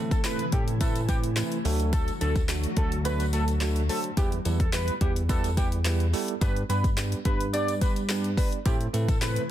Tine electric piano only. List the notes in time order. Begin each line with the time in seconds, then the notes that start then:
Already playing: E3 A3 C4 E4 A4
0.24 E3 A3 C4 E4 A4
0.53 E3 A3 C4 E4 A4
0.81 E3 A3 C4 E4 B4
1.09 E3 A3 C4 E4 B4
1.37 E3 A3 C4 E4 B4
1.65 F#3 A3 D4 F#4 A4
2.21 F#3 A3 D4 F#4 A4
2.49 F#3 A3 D4 F#4 A4
2.77 F#3 A3 D4 F#4 A4
3.05 F#3 A3 D4 F#4 B4
3.33 F#3 A3 D4 F#4 A4
3.61 F#3 A3 D4 F#4 A4
3.89 F#3 A3 D4 F#4 C5
4.17 G3 B3 E4 G4 B4
4.45 G3 B3 E4 G4 B4
4.73 G3 B3 E4 G4 B4
5.01 G3 B3 E4 G4 B4
5.29 G3 B3 E4 G4 B4
5.57 G3 B3 E4 G4 B4
5.85 G3 B3 E4 G4 B4
6.13 G3 B3 E4 G4 A4
6.41 G3 B3 D4 G4 B4
6.69 G3 B3 D4 G4 B4
6.97 G3 B3 D4 G4 B4
7.26 G3 B3 D4 G4 B4
7.53 G3 B3 D4 G4 D5
7.81 G3 B3 D4 G4 B4
8.10 G3 B3 D4 G4 B4
8.38 G3 B3 D4 G4 D5
8.65 A3 C4 E4 A4 C5
8.94 A3 C4 E4 A4 B4
9.22 A3 C4 E4 A4 C5